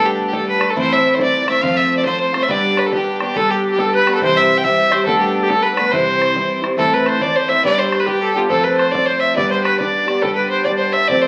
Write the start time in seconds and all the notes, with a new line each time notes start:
Already playing: G3 A3 B3 D4
0.05 G4
0.27 G4
0.32 G3 A3 B3 D4 A4, bodhran
0.48 B4
0.59 A3 B3 D4, bodhran
0.70 A4
0.75 A2 E3 A3 C4 E4 C5, bodhran
0.92 E5
1.14 C5
1.19 E3 A3 C4 E4 D5, bodhran
1.47 A3 C4 E4 E5, bodhran
1.62 F3 A3 C4 F4 F5, bodhran
1.76 E5
1.97 D5
2.05 F3 A3 C4 F4 C5, bodhran
2.20 C5
2.33 A3 C4 F4, bodhran
2.42 E5
2.48 G3 B3 D4 G4 D5, bodhran
2.77 B4, bodhran
2.86 A4
2.92 G3 B3 D4 G4, bodhran
3.20 B3 D4 G4, bodhran
3.35 G3 B3 D4 G4 A4, bodhran
3.50 G4
3.71 G4
3.77 G3 B3 D4 G4 A4, bodhran
3.94 B4
4.06 B3 D4 G4, bodhran
4.14 A4
4.21 C3 E3 G3 C4 G4 C5, bodhran
4.36 E5
4.57 G5
4.63 E3 G3 C4 G4 E5, bodhran
4.91 G3 C4 G4 C5, bodhran
5.05 G3 A3 B3 D4 A4, bodhran
5.19 G4
5.42 G4
5.48 G3 A3 B3 D4 A4, bodhran
5.62 B4
5.75 B3 D4 B4, bodhran
5.79 A3
5.91 C3 E3 G3 C4 E4 C5, bodhran
6.22 bodhran
6.34 E3 G3 C4 E4, bodhran
6.62 G3 C4 E4, bodhran
6.77 A2 E3 A3 C4 E4 A4, bodhran
6.93 B4
7.06 C5, bodhran
7.20 E3 A3 C4 E4 D5, bodhran
7.36 C5
7.48 A3 C4 E4 E5
7.64 G3 B3 D4 G4 D5, bodhran
7.78 C5
7.92 bodhran
8.00 B4
8.06 G3 B3 D4 G4, bodhran
8.21 G4 A4
8.34 B3 D4 F4 G4
8.49 F3 A3 C4 F4 A4, bodhran
8.63 B4
8.77 C5, bodhran
8.91 F3 A3 C4 F4 D5, bodhran
9.05 C5
9.20 E5
9.35 G3 B3 D4 G4 D5, bodhran
9.51 C5
9.63 B4, bodhran
9.79 G3 B3 D4 G4 D5, bodhran
10.07 B3 D4 G4, bodhran
10.21 G3 B3 D4 G4 A4, bodhran
10.35 B4
10.49 C5
10.64 G3 B3 D4 G4 D5, bodhran
10.77 C5
10.92 E5
11.08 F3 A3 C4 G4 D5, bodhran
11.21 C5